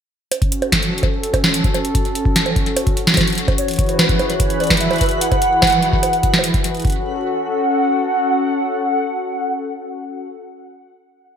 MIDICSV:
0, 0, Header, 1, 5, 480
1, 0, Start_track
1, 0, Key_signature, 3, "minor"
1, 0, Tempo, 408163
1, 372, Time_signature, 4, 2, 24, 8
1, 13369, End_track
2, 0, Start_track
2, 0, Title_t, "Soft synth lead"
2, 0, Program_c, 0, 80
2, 4211, Note_on_c, 0, 73, 94
2, 4690, Note_on_c, 0, 71, 89
2, 4708, Note_off_c, 0, 73, 0
2, 5049, Note_on_c, 0, 73, 103
2, 5067, Note_off_c, 0, 71, 0
2, 5410, Note_on_c, 0, 74, 93
2, 5428, Note_off_c, 0, 73, 0
2, 5643, Note_off_c, 0, 74, 0
2, 5650, Note_on_c, 0, 76, 108
2, 6097, Note_off_c, 0, 76, 0
2, 6127, Note_on_c, 0, 78, 123
2, 7762, Note_off_c, 0, 78, 0
2, 8050, Note_on_c, 0, 78, 102
2, 12111, Note_off_c, 0, 78, 0
2, 13369, End_track
3, 0, Start_track
3, 0, Title_t, "Synth texture"
3, 0, Program_c, 1, 99
3, 4212, Note_on_c, 1, 71, 86
3, 8062, Note_off_c, 1, 71, 0
3, 13369, End_track
4, 0, Start_track
4, 0, Title_t, "Analog synth pad"
4, 0, Program_c, 2, 89
4, 372, Note_on_c, 2, 61, 65
4, 537, Note_on_c, 2, 66, 73
4, 707, Note_on_c, 2, 69, 77
4, 4211, Note_off_c, 2, 69, 0
4, 4215, Note_on_c, 2, 52, 80
4, 4385, Note_on_c, 2, 71, 74
4, 4439, Note_on_c, 2, 68, 63
4, 4517, Note_on_c, 2, 64, 88
4, 5634, Note_off_c, 2, 61, 0
4, 8048, Note_on_c, 2, 61, 72
4, 8051, Note_off_c, 2, 66, 0
4, 8052, Note_off_c, 2, 71, 0
4, 8054, Note_off_c, 2, 52, 0
4, 8054, Note_off_c, 2, 64, 0
4, 8054, Note_off_c, 2, 68, 0
4, 8123, Note_on_c, 2, 66, 68
4, 8198, Note_on_c, 2, 69, 73
4, 12108, Note_off_c, 2, 61, 0
4, 12183, Note_off_c, 2, 66, 0
4, 12259, Note_off_c, 2, 69, 0
4, 13369, End_track
5, 0, Start_track
5, 0, Title_t, "Drums"
5, 371, Note_on_c, 9, 42, 90
5, 371, Note_on_c, 9, 60, 54
5, 488, Note_off_c, 9, 42, 0
5, 488, Note_off_c, 9, 60, 0
5, 490, Note_on_c, 9, 36, 111
5, 491, Note_on_c, 9, 42, 41
5, 608, Note_off_c, 9, 36, 0
5, 609, Note_off_c, 9, 42, 0
5, 611, Note_on_c, 9, 42, 66
5, 729, Note_off_c, 9, 42, 0
5, 731, Note_on_c, 9, 42, 38
5, 731, Note_on_c, 9, 60, 75
5, 849, Note_off_c, 9, 42, 0
5, 849, Note_off_c, 9, 60, 0
5, 850, Note_on_c, 9, 36, 98
5, 851, Note_on_c, 9, 38, 112
5, 851, Note_on_c, 9, 42, 91
5, 968, Note_off_c, 9, 36, 0
5, 969, Note_off_c, 9, 38, 0
5, 969, Note_off_c, 9, 42, 0
5, 971, Note_on_c, 9, 42, 39
5, 1089, Note_off_c, 9, 42, 0
5, 1151, Note_on_c, 9, 42, 37
5, 1210, Note_on_c, 9, 36, 110
5, 1211, Note_off_c, 9, 42, 0
5, 1211, Note_on_c, 9, 42, 38
5, 1211, Note_on_c, 9, 60, 50
5, 1328, Note_off_c, 9, 36, 0
5, 1329, Note_off_c, 9, 42, 0
5, 1329, Note_off_c, 9, 60, 0
5, 1452, Note_on_c, 9, 42, 38
5, 1569, Note_off_c, 9, 42, 0
5, 1570, Note_on_c, 9, 36, 93
5, 1572, Note_on_c, 9, 42, 71
5, 1572, Note_on_c, 9, 60, 86
5, 1688, Note_off_c, 9, 36, 0
5, 1690, Note_off_c, 9, 42, 0
5, 1690, Note_off_c, 9, 60, 0
5, 1692, Note_on_c, 9, 38, 112
5, 1809, Note_off_c, 9, 38, 0
5, 1812, Note_on_c, 9, 42, 91
5, 1929, Note_off_c, 9, 42, 0
5, 1930, Note_on_c, 9, 36, 118
5, 1933, Note_on_c, 9, 42, 39
5, 2048, Note_off_c, 9, 36, 0
5, 2050, Note_off_c, 9, 42, 0
5, 2052, Note_on_c, 9, 42, 62
5, 2052, Note_on_c, 9, 60, 53
5, 2169, Note_off_c, 9, 42, 0
5, 2169, Note_off_c, 9, 60, 0
5, 2172, Note_on_c, 9, 42, 39
5, 2290, Note_off_c, 9, 42, 0
5, 2290, Note_on_c, 9, 36, 109
5, 2292, Note_on_c, 9, 42, 94
5, 2408, Note_off_c, 9, 36, 0
5, 2410, Note_off_c, 9, 42, 0
5, 2412, Note_on_c, 9, 42, 39
5, 2530, Note_off_c, 9, 42, 0
5, 2532, Note_on_c, 9, 42, 71
5, 2650, Note_off_c, 9, 42, 0
5, 2651, Note_on_c, 9, 36, 117
5, 2768, Note_off_c, 9, 36, 0
5, 2773, Note_on_c, 9, 38, 116
5, 2773, Note_on_c, 9, 42, 92
5, 2891, Note_off_c, 9, 38, 0
5, 2891, Note_off_c, 9, 42, 0
5, 2892, Note_on_c, 9, 42, 38
5, 2892, Note_on_c, 9, 60, 52
5, 3010, Note_off_c, 9, 42, 0
5, 3010, Note_off_c, 9, 60, 0
5, 3011, Note_on_c, 9, 36, 104
5, 3013, Note_on_c, 9, 42, 37
5, 3129, Note_off_c, 9, 36, 0
5, 3131, Note_off_c, 9, 42, 0
5, 3133, Note_on_c, 9, 42, 40
5, 3250, Note_off_c, 9, 42, 0
5, 3252, Note_on_c, 9, 42, 92
5, 3252, Note_on_c, 9, 60, 81
5, 3370, Note_off_c, 9, 42, 0
5, 3370, Note_off_c, 9, 60, 0
5, 3371, Note_on_c, 9, 36, 116
5, 3372, Note_on_c, 9, 42, 39
5, 3489, Note_off_c, 9, 36, 0
5, 3490, Note_off_c, 9, 42, 0
5, 3492, Note_on_c, 9, 42, 71
5, 3610, Note_off_c, 9, 42, 0
5, 3612, Note_on_c, 9, 38, 115
5, 3612, Note_on_c, 9, 42, 40
5, 3692, Note_off_c, 9, 38, 0
5, 3692, Note_on_c, 9, 38, 96
5, 3730, Note_off_c, 9, 42, 0
5, 3731, Note_on_c, 9, 36, 106
5, 3731, Note_on_c, 9, 42, 93
5, 3731, Note_on_c, 9, 60, 49
5, 3771, Note_off_c, 9, 38, 0
5, 3771, Note_on_c, 9, 38, 76
5, 3848, Note_off_c, 9, 42, 0
5, 3848, Note_off_c, 9, 60, 0
5, 3849, Note_off_c, 9, 36, 0
5, 3851, Note_on_c, 9, 42, 40
5, 3882, Note_off_c, 9, 42, 0
5, 3882, Note_on_c, 9, 42, 31
5, 3889, Note_off_c, 9, 38, 0
5, 3911, Note_off_c, 9, 42, 0
5, 3911, Note_on_c, 9, 42, 26
5, 3942, Note_off_c, 9, 42, 0
5, 3942, Note_on_c, 9, 42, 22
5, 3971, Note_off_c, 9, 42, 0
5, 3971, Note_on_c, 9, 42, 66
5, 4089, Note_off_c, 9, 42, 0
5, 4091, Note_on_c, 9, 36, 127
5, 4093, Note_on_c, 9, 42, 39
5, 4093, Note_on_c, 9, 60, 74
5, 4209, Note_off_c, 9, 36, 0
5, 4210, Note_off_c, 9, 42, 0
5, 4210, Note_off_c, 9, 60, 0
5, 4212, Note_on_c, 9, 42, 89
5, 4330, Note_off_c, 9, 42, 0
5, 4333, Note_on_c, 9, 42, 38
5, 4362, Note_off_c, 9, 42, 0
5, 4362, Note_on_c, 9, 42, 32
5, 4392, Note_off_c, 9, 42, 0
5, 4392, Note_on_c, 9, 42, 26
5, 4422, Note_off_c, 9, 42, 0
5, 4422, Note_on_c, 9, 42, 20
5, 4451, Note_on_c, 9, 36, 107
5, 4454, Note_off_c, 9, 42, 0
5, 4454, Note_on_c, 9, 42, 69
5, 4483, Note_off_c, 9, 42, 0
5, 4483, Note_on_c, 9, 42, 14
5, 4513, Note_off_c, 9, 42, 0
5, 4513, Note_on_c, 9, 42, 11
5, 4544, Note_off_c, 9, 42, 0
5, 4544, Note_on_c, 9, 42, 10
5, 4569, Note_off_c, 9, 36, 0
5, 4573, Note_off_c, 9, 42, 0
5, 4573, Note_on_c, 9, 42, 37
5, 4573, Note_on_c, 9, 60, 21
5, 4633, Note_off_c, 9, 60, 0
5, 4633, Note_on_c, 9, 60, 28
5, 4690, Note_off_c, 9, 42, 0
5, 4692, Note_off_c, 9, 60, 0
5, 4692, Note_on_c, 9, 38, 117
5, 4692, Note_on_c, 9, 42, 91
5, 4692, Note_on_c, 9, 60, 34
5, 4752, Note_off_c, 9, 60, 0
5, 4752, Note_on_c, 9, 60, 41
5, 4810, Note_off_c, 9, 38, 0
5, 4810, Note_off_c, 9, 42, 0
5, 4811, Note_on_c, 9, 36, 114
5, 4812, Note_on_c, 9, 42, 38
5, 4870, Note_off_c, 9, 60, 0
5, 4929, Note_off_c, 9, 36, 0
5, 4930, Note_off_c, 9, 42, 0
5, 4933, Note_on_c, 9, 42, 38
5, 4933, Note_on_c, 9, 60, 74
5, 5050, Note_off_c, 9, 42, 0
5, 5050, Note_off_c, 9, 60, 0
5, 5052, Note_on_c, 9, 42, 38
5, 5170, Note_off_c, 9, 42, 0
5, 5171, Note_on_c, 9, 36, 107
5, 5172, Note_on_c, 9, 42, 94
5, 5288, Note_off_c, 9, 36, 0
5, 5290, Note_off_c, 9, 42, 0
5, 5293, Note_on_c, 9, 42, 36
5, 5411, Note_off_c, 9, 42, 0
5, 5412, Note_on_c, 9, 42, 32
5, 5412, Note_on_c, 9, 60, 50
5, 5453, Note_off_c, 9, 42, 0
5, 5453, Note_on_c, 9, 42, 37
5, 5491, Note_off_c, 9, 42, 0
5, 5491, Note_on_c, 9, 42, 42
5, 5530, Note_off_c, 9, 60, 0
5, 5531, Note_on_c, 9, 36, 117
5, 5532, Note_off_c, 9, 42, 0
5, 5532, Note_on_c, 9, 38, 127
5, 5532, Note_on_c, 9, 42, 47
5, 5571, Note_off_c, 9, 42, 0
5, 5571, Note_on_c, 9, 42, 51
5, 5612, Note_off_c, 9, 42, 0
5, 5612, Note_on_c, 9, 42, 58
5, 5648, Note_off_c, 9, 36, 0
5, 5650, Note_off_c, 9, 38, 0
5, 5651, Note_off_c, 9, 42, 0
5, 5651, Note_on_c, 9, 42, 96
5, 5769, Note_off_c, 9, 42, 0
5, 5771, Note_on_c, 9, 42, 19
5, 5771, Note_on_c, 9, 60, 76
5, 5801, Note_off_c, 9, 42, 0
5, 5801, Note_on_c, 9, 42, 20
5, 5830, Note_off_c, 9, 42, 0
5, 5830, Note_on_c, 9, 42, 23
5, 5861, Note_off_c, 9, 42, 0
5, 5861, Note_on_c, 9, 42, 25
5, 5888, Note_off_c, 9, 60, 0
5, 5891, Note_off_c, 9, 42, 0
5, 5891, Note_on_c, 9, 36, 106
5, 5891, Note_on_c, 9, 42, 66
5, 5921, Note_off_c, 9, 42, 0
5, 5921, Note_on_c, 9, 42, 30
5, 5951, Note_off_c, 9, 42, 0
5, 5951, Note_on_c, 9, 42, 32
5, 5982, Note_off_c, 9, 42, 0
5, 5982, Note_on_c, 9, 42, 35
5, 6008, Note_off_c, 9, 36, 0
5, 6011, Note_off_c, 9, 42, 0
5, 6011, Note_on_c, 9, 42, 39
5, 6128, Note_off_c, 9, 42, 0
5, 6131, Note_on_c, 9, 42, 93
5, 6249, Note_off_c, 9, 42, 0
5, 6251, Note_on_c, 9, 36, 119
5, 6252, Note_on_c, 9, 42, 40
5, 6252, Note_on_c, 9, 60, 50
5, 6368, Note_off_c, 9, 36, 0
5, 6369, Note_off_c, 9, 42, 0
5, 6369, Note_off_c, 9, 60, 0
5, 6371, Note_on_c, 9, 42, 62
5, 6488, Note_off_c, 9, 42, 0
5, 6610, Note_on_c, 9, 38, 119
5, 6610, Note_on_c, 9, 42, 40
5, 6610, Note_on_c, 9, 60, 72
5, 6611, Note_on_c, 9, 36, 113
5, 6641, Note_off_c, 9, 42, 0
5, 6641, Note_on_c, 9, 42, 52
5, 6670, Note_off_c, 9, 42, 0
5, 6670, Note_on_c, 9, 42, 64
5, 6699, Note_off_c, 9, 42, 0
5, 6699, Note_on_c, 9, 42, 69
5, 6728, Note_off_c, 9, 36, 0
5, 6728, Note_off_c, 9, 38, 0
5, 6728, Note_off_c, 9, 60, 0
5, 6731, Note_off_c, 9, 42, 0
5, 6731, Note_on_c, 9, 42, 37
5, 6848, Note_off_c, 9, 42, 0
5, 6850, Note_on_c, 9, 42, 37
5, 6968, Note_off_c, 9, 42, 0
5, 6971, Note_on_c, 9, 36, 117
5, 7088, Note_off_c, 9, 36, 0
5, 7090, Note_on_c, 9, 42, 87
5, 7090, Note_on_c, 9, 60, 51
5, 7208, Note_off_c, 9, 42, 0
5, 7208, Note_off_c, 9, 60, 0
5, 7210, Note_on_c, 9, 42, 37
5, 7328, Note_off_c, 9, 42, 0
5, 7330, Note_on_c, 9, 42, 68
5, 7331, Note_on_c, 9, 36, 100
5, 7448, Note_off_c, 9, 36, 0
5, 7448, Note_off_c, 9, 42, 0
5, 7451, Note_on_c, 9, 38, 124
5, 7512, Note_on_c, 9, 60, 78
5, 7568, Note_off_c, 9, 38, 0
5, 7570, Note_on_c, 9, 42, 90
5, 7630, Note_off_c, 9, 60, 0
5, 7688, Note_off_c, 9, 42, 0
5, 7691, Note_on_c, 9, 36, 115
5, 7692, Note_on_c, 9, 42, 37
5, 7809, Note_off_c, 9, 36, 0
5, 7809, Note_off_c, 9, 42, 0
5, 7812, Note_on_c, 9, 42, 65
5, 7929, Note_off_c, 9, 42, 0
5, 7933, Note_on_c, 9, 42, 18
5, 7962, Note_off_c, 9, 42, 0
5, 7962, Note_on_c, 9, 42, 19
5, 7992, Note_off_c, 9, 42, 0
5, 7992, Note_on_c, 9, 42, 22
5, 8022, Note_off_c, 9, 42, 0
5, 8022, Note_on_c, 9, 42, 25
5, 8051, Note_on_c, 9, 36, 115
5, 8052, Note_off_c, 9, 42, 0
5, 8052, Note_on_c, 9, 42, 28
5, 8082, Note_off_c, 9, 42, 0
5, 8082, Note_on_c, 9, 42, 31
5, 8111, Note_off_c, 9, 42, 0
5, 8111, Note_on_c, 9, 42, 34
5, 8141, Note_off_c, 9, 42, 0
5, 8141, Note_on_c, 9, 42, 35
5, 8169, Note_off_c, 9, 36, 0
5, 8259, Note_off_c, 9, 42, 0
5, 13369, End_track
0, 0, End_of_file